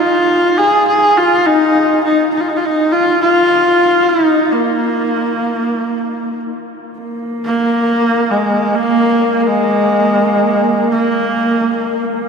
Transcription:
0, 0, Header, 1, 3, 480
1, 0, Start_track
1, 0, Tempo, 500000
1, 11796, End_track
2, 0, Start_track
2, 0, Title_t, "Horsehead fiddle"
2, 0, Program_c, 0, 110
2, 0, Note_on_c, 0, 65, 94
2, 555, Note_on_c, 0, 68, 96
2, 569, Note_off_c, 0, 65, 0
2, 833, Note_off_c, 0, 68, 0
2, 839, Note_on_c, 0, 68, 95
2, 1130, Note_on_c, 0, 65, 94
2, 1145, Note_off_c, 0, 68, 0
2, 1402, Note_on_c, 0, 63, 94
2, 1416, Note_off_c, 0, 65, 0
2, 1952, Note_off_c, 0, 63, 0
2, 1957, Note_on_c, 0, 63, 85
2, 2222, Note_off_c, 0, 63, 0
2, 2244, Note_on_c, 0, 63, 75
2, 2308, Note_on_c, 0, 65, 68
2, 2323, Note_off_c, 0, 63, 0
2, 2384, Note_on_c, 0, 63, 79
2, 2398, Note_off_c, 0, 65, 0
2, 2463, Note_on_c, 0, 65, 73
2, 2478, Note_off_c, 0, 63, 0
2, 2547, Note_on_c, 0, 63, 84
2, 2562, Note_off_c, 0, 65, 0
2, 2804, Note_on_c, 0, 65, 87
2, 2818, Note_off_c, 0, 63, 0
2, 3084, Note_off_c, 0, 65, 0
2, 3092, Note_on_c, 0, 65, 98
2, 3919, Note_on_c, 0, 63, 90
2, 3934, Note_off_c, 0, 65, 0
2, 4335, Note_on_c, 0, 58, 81
2, 4349, Note_off_c, 0, 63, 0
2, 6153, Note_off_c, 0, 58, 0
2, 7155, Note_on_c, 0, 58, 94
2, 7975, Note_on_c, 0, 56, 80
2, 7990, Note_off_c, 0, 58, 0
2, 8402, Note_on_c, 0, 58, 92
2, 8416, Note_off_c, 0, 56, 0
2, 9024, Note_off_c, 0, 58, 0
2, 9024, Note_on_c, 0, 58, 55
2, 9087, Note_on_c, 0, 56, 85
2, 9101, Note_off_c, 0, 58, 0
2, 10472, Note_off_c, 0, 56, 0
2, 10478, Note_on_c, 0, 58, 85
2, 11567, Note_off_c, 0, 58, 0
2, 11796, End_track
3, 0, Start_track
3, 0, Title_t, "Horsehead fiddle"
3, 0, Program_c, 1, 110
3, 6715, Note_on_c, 1, 58, 63
3, 11196, Note_off_c, 1, 58, 0
3, 11201, Note_on_c, 1, 58, 68
3, 11796, Note_off_c, 1, 58, 0
3, 11796, End_track
0, 0, End_of_file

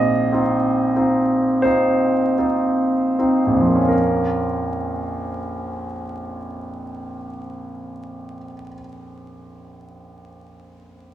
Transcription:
0, 0, Header, 1, 2, 480
1, 0, Start_track
1, 0, Key_signature, -5, "minor"
1, 0, Tempo, 1948052
1, 406, Tempo, 2264151
1, 886, Time_signature, 4, 2, 24, 8
1, 886, Tempo, 2090592
1, 2546, End_track
2, 0, Start_track
2, 0, Title_t, "Grand piano"
2, 0, Program_c, 0, 0
2, 0, Control_c, 0, 64, 127
2, 0, Note_on_c, 0, 34, 36
2, 0, Note_on_c, 0, 60, 28
2, 0, Note_on_c, 0, 63, 30
2, 0, Note_on_c, 0, 65, 33
2, 0, Note_on_c, 0, 75, 62
2, 0, Note_on_c, 0, 77, 49
2, 77, Note_off_c, 0, 34, 0
2, 80, Note_off_c, 0, 60, 0
2, 80, Note_on_c, 0, 60, 28
2, 82, Note_off_c, 0, 63, 0
2, 82, Note_on_c, 0, 63, 28
2, 83, Note_off_c, 0, 65, 0
2, 83, Note_on_c, 0, 65, 30
2, 228, Note_off_c, 0, 60, 0
2, 229, Note_off_c, 0, 63, 0
2, 229, Note_off_c, 0, 65, 0
2, 237, Note_on_c, 0, 60, 27
2, 238, Note_on_c, 0, 63, 27
2, 239, Note_on_c, 0, 65, 29
2, 395, Note_off_c, 0, 60, 0
2, 396, Note_off_c, 0, 63, 0
2, 396, Note_off_c, 0, 65, 0
2, 400, Note_on_c, 0, 72, 49
2, 403, Note_off_c, 0, 75, 0
2, 405, Note_on_c, 0, 60, 28
2, 406, Note_on_c, 0, 63, 30
2, 407, Note_on_c, 0, 65, 31
2, 553, Note_off_c, 0, 60, 0
2, 554, Note_off_c, 0, 63, 0
2, 554, Note_off_c, 0, 65, 0
2, 562, Note_on_c, 0, 60, 25
2, 563, Note_on_c, 0, 63, 27
2, 563, Note_on_c, 0, 65, 28
2, 724, Note_off_c, 0, 60, 0
2, 724, Note_off_c, 0, 63, 0
2, 724, Note_off_c, 0, 65, 0
2, 732, Note_on_c, 0, 60, 24
2, 733, Note_on_c, 0, 65, 26
2, 734, Note_on_c, 0, 63, 25
2, 791, Note_on_c, 0, 34, 30
2, 807, Note_on_c, 0, 41, 23
2, 821, Note_on_c, 0, 53, 25
2, 837, Note_on_c, 0, 58, 24
2, 852, Note_on_c, 0, 61, 26
2, 865, Note_off_c, 0, 65, 0
2, 868, Note_on_c, 0, 65, 24
2, 878, Note_off_c, 0, 60, 0
2, 878, Note_off_c, 0, 63, 0
2, 880, Note_on_c, 0, 70, 36
2, 884, Note_off_c, 0, 72, 0
2, 892, Control_c, 0, 64, 0
2, 893, Note_off_c, 0, 77, 0
2, 958, Control_c, 0, 64, 127
2, 1912, Note_off_c, 0, 34, 0
2, 1929, Note_off_c, 0, 41, 0
2, 1945, Note_off_c, 0, 53, 0
2, 1961, Note_off_c, 0, 58, 0
2, 1978, Note_off_c, 0, 61, 0
2, 1995, Note_off_c, 0, 65, 0
2, 2008, Note_off_c, 0, 70, 0
2, 2546, End_track
0, 0, End_of_file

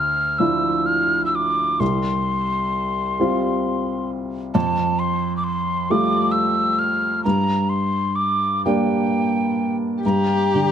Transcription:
0, 0, Header, 1, 4, 480
1, 0, Start_track
1, 0, Tempo, 937500
1, 927, Time_signature, 6, 3, 24, 8
1, 1404, Tempo, 900901
1, 3804, Tempo, 934579
1, 5587, End_track
2, 0, Start_track
2, 0, Title_t, "Tin whistle"
2, 0, Program_c, 0, 75
2, 0, Note_on_c, 0, 89, 67
2, 196, Note_on_c, 0, 88, 65
2, 204, Note_off_c, 0, 89, 0
2, 440, Note_on_c, 0, 89, 66
2, 448, Note_off_c, 0, 88, 0
2, 640, Note_off_c, 0, 89, 0
2, 643, Note_on_c, 0, 88, 44
2, 692, Note_on_c, 0, 86, 69
2, 700, Note_off_c, 0, 88, 0
2, 921, Note_on_c, 0, 84, 69
2, 928, Note_off_c, 0, 86, 0
2, 2128, Note_off_c, 0, 84, 0
2, 2361, Note_on_c, 0, 81, 80
2, 2602, Note_on_c, 0, 84, 73
2, 2610, Note_off_c, 0, 81, 0
2, 2800, Note_off_c, 0, 84, 0
2, 2803, Note_on_c, 0, 86, 53
2, 2840, Note_on_c, 0, 84, 75
2, 2848, Note_off_c, 0, 86, 0
2, 3091, Note_on_c, 0, 86, 79
2, 3099, Note_off_c, 0, 84, 0
2, 3308, Note_on_c, 0, 88, 73
2, 3316, Note_off_c, 0, 86, 0
2, 3559, Note_on_c, 0, 89, 73
2, 3567, Note_off_c, 0, 88, 0
2, 3796, Note_off_c, 0, 89, 0
2, 3799, Note_on_c, 0, 82, 78
2, 4033, Note_on_c, 0, 84, 67
2, 4041, Note_off_c, 0, 82, 0
2, 4270, Note_on_c, 0, 86, 69
2, 4278, Note_off_c, 0, 84, 0
2, 4511, Note_off_c, 0, 86, 0
2, 4527, Note_on_c, 0, 79, 56
2, 5097, Note_off_c, 0, 79, 0
2, 5247, Note_on_c, 0, 82, 59
2, 5587, Note_off_c, 0, 82, 0
2, 5587, End_track
3, 0, Start_track
3, 0, Title_t, "Cello"
3, 0, Program_c, 1, 42
3, 5230, Note_on_c, 1, 67, 63
3, 5587, Note_off_c, 1, 67, 0
3, 5587, End_track
4, 0, Start_track
4, 0, Title_t, "Upright piano"
4, 0, Program_c, 2, 0
4, 0, Control_c, 2, 64, 127
4, 0, Note_on_c, 2, 38, 45
4, 202, Note_on_c, 2, 53, 37
4, 202, Note_on_c, 2, 62, 32
4, 209, Note_on_c, 2, 64, 44
4, 905, Note_off_c, 2, 38, 0
4, 905, Note_off_c, 2, 53, 0
4, 905, Note_off_c, 2, 62, 0
4, 908, Note_off_c, 2, 64, 0
4, 921, Note_on_c, 2, 36, 48
4, 934, Control_c, 2, 64, 0
4, 1025, Control_c, 2, 64, 127
4, 1646, Note_on_c, 2, 55, 40
4, 1651, Note_on_c, 2, 60, 35
4, 1653, Note_on_c, 2, 65, 45
4, 2344, Note_off_c, 2, 36, 0
4, 2345, Note_off_c, 2, 55, 0
4, 2347, Note_off_c, 2, 60, 0
4, 2348, Note_off_c, 2, 65, 0
4, 2367, Note_on_c, 2, 41, 49
4, 2375, Control_c, 2, 64, 0
4, 2468, Control_c, 2, 64, 127
4, 3088, Note_on_c, 2, 55, 41
4, 3090, Note_on_c, 2, 57, 39
4, 3093, Note_on_c, 2, 65, 48
4, 3781, Note_off_c, 2, 41, 0
4, 3787, Note_off_c, 2, 55, 0
4, 3788, Note_off_c, 2, 57, 0
4, 3789, Note_off_c, 2, 65, 0
4, 3808, Note_on_c, 2, 43, 48
4, 3810, Control_c, 2, 64, 0
4, 3913, Control_c, 2, 64, 127
4, 4529, Note_on_c, 2, 55, 37
4, 4529, Note_on_c, 2, 58, 35
4, 4535, Note_on_c, 2, 62, 43
4, 5218, Note_off_c, 2, 43, 0
4, 5223, Note_off_c, 2, 55, 0
4, 5223, Note_off_c, 2, 58, 0
4, 5226, Note_off_c, 2, 62, 0
4, 5242, Control_c, 2, 64, 0
4, 5246, Note_on_c, 2, 43, 44
4, 5331, Control_c, 2, 64, 127
4, 5499, Note_on_c, 2, 50, 36
4, 5587, Note_off_c, 2, 43, 0
4, 5587, Note_off_c, 2, 50, 0
4, 5587, End_track
0, 0, End_of_file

